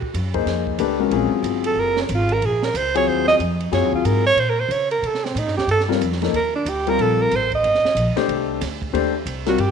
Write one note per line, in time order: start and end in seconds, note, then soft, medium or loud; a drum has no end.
0.02 muted upright bass stroke soft
0.02 kick soft
0.14 0.45 F#2 medium
0.14 hi-hat pedal medium
0.14 ride medium
0.34 0.77 A#3 medium
0.34 0.77 D#4 medium
0.34 0.77 G#4 medium
0.34 0.77 C5 medium
0.34 kick medium
0.34 ride soft
0.45 0.78 F2 medium
0.45 snare soft
0.45 ride soft
0.67 kick medium
0.79 1.10 C#2 medium
0.79 0.97 A3 medium
0.79 0.98 D4 medium
0.79 0.98 G4 medium
0.79 0.98 B4 medium
0.79 hi-hat pedal soft
0.79 ride medium
1.00 1.28 G#3 medium
1.00 1.28 C#4 medium
1.00 1.28 F#4 medium
1.00 1.28 A#4 medium
1.11 1.30 A#1 medium
1.11 2.02 F#3 medium
1.11 2.02 C4 medium
1.11 2.02 F4 medium
1.11 2.02 G#4 medium
1.11 ride medium
1.31 muted upright bass stroke soft
1.43 1.75 G1 medium
1.43 hi-hat pedal medium
1.43 ride medium
1.64 1.81 A4 medium
1.64 ride medium
1.76 2.08 F#1 medium
1.76 1.98 A#4 medium
1.97 snare medium
2.02 2.16 C#4 soft
2.09 2.41 G#1 medium
2.09 hi-hat pedal medium
2.09 ride medium
2.15 2.35 F4 medium
2.29 ride soft
2.33 2.47 A#4 loud
2.42 2.74 A#1 medium
2.42 2.66 G#4 medium
2.42 ride medium
2.63 2.78 A#4 medium
2.63 snare medium
2.74 3.06 C#2 medium
2.74 2.96 C5 medium
2.74 hi-hat pedal medium
2.74 ride medium
2.95 3.37 F#3 medium
2.95 3.38 C4 medium
2.95 3.38 F4 medium
2.95 3.38 G#4 medium
2.95 3.09 C#5 medium
2.95 ride medium
3.07 3.39 D#2 medium
3.07 3.27 C5 medium
3.28 3.35 D#5 loud
3.28 snare soft
3.39 3.71 F2 medium
3.39 hi-hat pedal medium
3.39 ride medium
3.61 ride soft
3.72 3.83 F#2 medium
3.72 4.21 F#3 medium
3.72 4.21 C4 medium
3.72 4.21 F4 medium
3.72 4.21 G#4 medium
3.72 3.92 C#5 medium
3.72 snare soft
3.72 ride medium
3.83 3.93 D#2 medium
3.93 4.04 C#2 medium
3.93 4.07 F4 medium
3.93 kick medium
4.05 4.35 G#2 medium
4.05 4.26 A#4 medium
4.05 hi-hat pedal medium
4.05 ride medium
4.26 4.41 C#5 loud
4.36 4.68 A#2 medium
4.36 4.51 C5 medium
4.36 ride medium
4.50 4.62 A#4 medium
4.60 4.73 C5 medium
4.69 5.01 C#3 medium
4.69 4.91 C#5 medium
4.69 hi-hat pedal soft
4.69 ride medium
4.91 5.08 A#4 medium
4.91 ride soft
5.02 5.34 C3 medium
5.02 ride medium
5.07 5.26 A4 medium
5.15 snare soft
5.25 5.40 C4 medium
5.25 snare soft
5.35 5.46 A2 medium
5.35 5.56 D#4 medium
5.35 hi-hat pedal soft
5.35 ride medium
5.46 5.56 G2 medium
5.46 snare soft
5.57 5.66 D#2 medium
5.57 5.68 G4 medium
5.57 snare soft
5.67 5.99 G2 medium
5.67 ride medium
5.71 5.82 A4 medium
5.80 snare soft
5.88 5.99 G3 medium
5.88 6.00 C4 medium
5.88 6.00 F4 medium
5.88 6.00 A#4 medium
5.88 snare soft
6.01 6.32 F2 medium
6.01 hi-hat pedal soft
6.01 ride medium
6.12 snare soft
6.22 6.33 F3 medium
6.22 6.33 A#3 medium
6.22 6.33 D#4 medium
6.22 6.33 A4 medium
6.22 snare soft
6.22 ride soft
6.33 6.65 D#2 medium
6.33 6.53 A#4 medium
6.33 ride medium
6.55 6.70 D4 medium
6.65 6.97 D2 medium
6.65 6.91 G4 medium
6.65 hi-hat pedal medium
6.65 ride medium
6.87 7.29 G3 medium
6.87 7.29 C4 medium
6.87 7.29 F4 medium
6.87 7.30 A#4 medium
6.87 7.03 A#4 loud
6.87 ride soft
6.98 7.30 A#1 medium
6.98 7.23 A4 medium
6.98 ride soft
7.22 7.37 A#4 loud
7.31 7.63 A1 medium
7.31 hi-hat pedal medium
7.31 ride medium
7.36 7.54 C5 medium
7.52 8.27 D#5 medium
7.52 kick soft
7.52 ride soft
7.63 7.82 G1 medium
7.63 ride medium
7.74 snare soft
7.84 muted upright bass stroke soft
7.84 snare soft
7.95 8.14 A#1 medium
7.95 hi-hat pedal medium
7.95 ride medium
8.16 8.59 A3 medium
8.16 8.59 D4 medium
8.16 8.59 G4 medium
8.16 8.59 C5 medium
8.16 muted upright bass stroke soft
8.16 snare soft
8.16 ride soft
8.28 8.60 C2 medium
8.28 ride medium
8.61 8.92 D2 medium
8.61 snare soft
8.61 hi-hat pedal medium
8.61 ride medium
8.82 kick medium
8.82 ride soft
8.93 9.25 D#2 medium
8.93 9.12 A3 medium
8.93 9.12 D4 medium
8.93 9.12 G4 medium
8.93 9.12 C5 medium
8.93 ride medium
9.26 9.58 C2 medium
9.26 hi-hat pedal medium
9.26 ride medium
9.46 9.58 G3 medium
9.46 9.58 C4 medium
9.46 9.58 F4 medium
9.46 9.62 F#4 medium
9.46 9.58 A#4 medium
9.46 snare soft
9.46 ride soft
9.58 9.71 G2 medium
9.58 9.71 G4 medium
9.58 ride medium